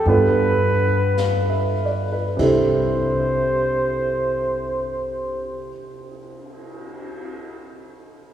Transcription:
0.06 G2 B3 D4 F4 A4 B4, brush sweep
1.17 F5, snare, hi-hat pedal
1.49 E5
1.85 D5
2.13 B4
2.37 C2 C3 C4 D4 E4 A4, kick, crash
2.43 C5
3.25 cymbal swell

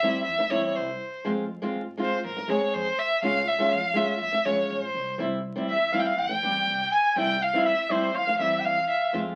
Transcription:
0.00 G3 C4 E4 E5
0.25 E2 E5
0.38 muted nylon-string guitar stroke
0.50 E2 G3 C4 E4 C#5
0.76 C2 C5
1.25 F2 G#3 C4 F4
1.62 G#3 C4 F4
1.75 G#2
1.97 G#3 C4 F4
2.02 C5
2.24 G#2 A#4
2.36 muted nylon-string guitar stroke
2.48 G#2 G#3 C4 G#4 C#5
2.74 F2 C5
2.99 E5
3.22 C#2 G#3 C#4 F4 F5
3.47 E5
3.58 G#3 C#4 F4
3.72 F2 F5
3.94 G#3 C#4 F4 E5
4.20 F2 E5
4.32 muted nylon-string guitar stroke
4.45 F2 G#3 C#4 F4 C#5
4.70 A#1 C#5
4.81 C5
4.94 C2
5.18 C2 G3 C4 E4
5.56 G3 C4 E4
5.68 E2 E5
5.92 G3 C4 E4 F5
5.99 G5
6.05 F5
6.17 E2 G5
6.29 muted nylon-string guitar stroke
6.42 E2 G3 C4 G4
6.67 C2
6.92 G#5
7.16 C2 G3 C4 E4 G5
7.42 F5
7.53 G3 C4 E4
7.65 E2 E5
7.90 G3 C4 E4 C5
8.15 E2 F5
8.27 muted nylon-string guitar stroke
8.39 E2 G3 C4 E4 E5
8.59 G5
8.65 E2 F5
8.90 E5
9.13 F2 G#3 C4 F4

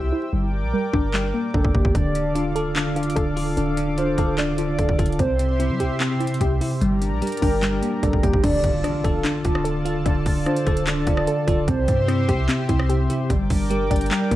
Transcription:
Already playing: C2 C4 E4 G4 C5 E5 G5 E6
0.13 E4
0.33 G1 G3 A#4 D5 G5 D6
0.63 A#1
0.73 G3 A#4
0.93 G1 D4, kick
1.14 G3, clap
1.34 A#3
1.54 G1 D4 A4, kick
1.65 G1, kick
1.75 G1 A#3 G4, kick
1.85 G1, kick
1.95 D1 D3 D4 A4 D5 F5 D6, kick, closed hi-hat
2.15 D4, closed hi-hat
2.35 D4 F4, closed hi-hat
2.55 A4, closed hi-hat
2.75 D3 D4, clap, closed hi-hat
2.96 D4 F4, closed hi-hat
3.03 closed hi-hat
3.10 closed hi-hat
3.16 D1 D3 A4, kick, closed hi-hat
3.36 F4 A4, open hi-hat
3.57 D1 D3 D4, closed hi-hat
3.77 D4, closed hi-hat
3.98 D4 F4 C5, closed hi-hat
4.18 D1 A4, kick, closed hi-hat
4.38 D3 D4 D5, clap, closed hi-hat
4.58 D4 F4, closed hi-hat
4.79 D1 D3 A4, kick, closed hi-hat
4.89 D1, kick
4.99 D1 F4 A4, kick, closed hi-hat
5.06 closed hi-hat
5.12 closed hi-hat
5.19 C2 C3 C4 G4 C5 E5 C6, kick, closed hi-hat
5.39 C4, closed hi-hat
5.59 C4 E4, closed hi-hat
5.70 G3
5.80 C2 G4, closed hi-hat
6.00 C3 C4, clap, closed hi-hat
6.20 C4 E4, closed hi-hat
6.27 closed hi-hat
6.34 closed hi-hat
6.41 C2 C3 G4, kick, closed hi-hat
6.61 E4 G4, open hi-hat
6.81 G1 G3 G4 A#4 D5 A#5, closed hi-hat
7.02 D4, closed hi-hat
7.12 A#1
7.22 G3 G4 A#4, closed hi-hat
7.27 closed hi-hat
7.32 closed hi-hat
7.37 closed hi-hat
7.42 G1 D4 G5, kick, open hi-hat
7.62 G3, clap, closed hi-hat
7.82 A#3 D4, closed hi-hat
8.03 G1 G3 D4 A4, kick, closed hi-hat
8.13 G1, kick
8.23 G1 A#3 G4 G5, kick, closed hi-hat
8.34 G1, kick
8.43 D1 D3 D4 F4 A4 D5 A5, kick, closed hi-hat, crash, impact
8.64 D1 D4, kick, closed hi-hat
8.84 D4 F4, cross-stick, closed hi-hat
9.04 D1 A4, kick, closed hi-hat
9.24 D3 D4, clap, closed hi-hat
9.45 D1 D4 F4, kick, closed hi-hat
9.55 cross-stick
9.64 D3 A4, closed hi-hat
9.85 F4 A4, closed hi-hat
10.06 D1 D3 D4, kick, closed hi-hat
10.26 D1 D4, kick, open hi-hat
10.46 D4 F4 C5, cross-stick, closed hi-hat
10.56 closed hi-hat
10.67 D1 A4, kick, closed hi-hat
10.77 closed hi-hat
10.87 D3 D4 D5, clap, closed hi-hat
11.07 D1 D4 F4, kick, closed hi-hat
11.17 cross-stick
11.27 D3 A4, closed hi-hat
11.47 D1 F4 A4, kick, closed hi-hat
11.68 C2 C3 C4 G4 C5 E5 C6, kick, closed hi-hat
11.88 G2 C4, kick, closed hi-hat
12.08 C4 E4, cross-stick, closed hi-hat
12.29 C2 G4, kick, closed hi-hat
12.49 C3 C4, clap, closed hi-hat
12.69 C2 C4 E4, kick, closed hi-hat
12.79 cross-stick
12.89 C3 G4, closed hi-hat
13.10 E4 G4, closed hi-hat
13.30 G1 G3 A#4 D5 G5 D6, kick, closed hi-hat
13.50 G1 D4, kick, open hi-hat
13.70 G3 G4 A#4, closed hi-hat
13.91 G1 D4 G5, kick, closed hi-hat
13.96 closed hi-hat
14.01 closed hi-hat
14.06 closed hi-hat
14.11 G3, clap, closed hi-hat
14.31 G1 A#3 D4, kick, closed hi-hat

